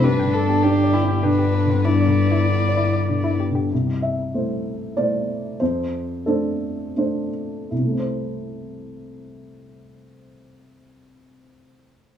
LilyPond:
<<
  \new Staff \with { instrumentName = "Violin" } { \time 3/4 \key c \major \tempo 4 = 93 b'8 a'8 g'4 b'4 | d''2~ d''8 r8 | r2. | r2. |
r2. | r2. | }
  \new Staff \with { instrumentName = "Synth pluck" } { \time 3/4 \key c \major g'16 g''16 r16 g'16 r8 g'16 g''16 g''16 g'16 b'16 b'16 | e'16 d''16 r16 e'16 r8 e'16 d''16 d''16 e'16 g'16 g'16 | r2. | r2. |
r2. | r2. | }
  \new Staff \with { instrumentName = "Analog synth pad" } { \time 3/4 \key c \major << { <b d''>2.~ | <b d''>2. | r2. | r2. |
r2. | r2. | } \\ { d'2. | e'2. | r2. | r2. |
r2. | r2. | } >> }
  \new Staff \with { instrumentName = "Cello" } { \time 3/4 \key c \major d'4. e'8 d'8. c'16 | b2~ b8 r8 | r2. | r2. |
r2. | r2. | }
  \new Staff \with { instrumentName = "Grand piano" } { \time 3/4 \key c \major r2. | r2. | r8 e''4. d''4 | c''4 a'4. r8 |
<c, c a c' e' c''>2.~ | <c, c a c' e' c''>2. | }
  \new Staff \with { instrumentName = "Grand piano" } { \time 3/4 \key c \major \tuplet 3/2 { g,8 d8 b8 d'8 d''8 d'8 d8 b8 d8 } | \tuplet 3/2 { g,8 d8 b8 e'8 d''8 e'8 d8 b8 d8 } | c,4 <a e' c''>4 <a e' c''>4 | f,4 <a d' c''>4 <a d' c''>4 |
r2. | r2. | }
  \new Staff \with { instrumentName = "Double bass" } { \clef bass \time 3/4 \key c \major g,,2.~ | g,,2. | r2. | r2. |
r2. | r2. | }
>>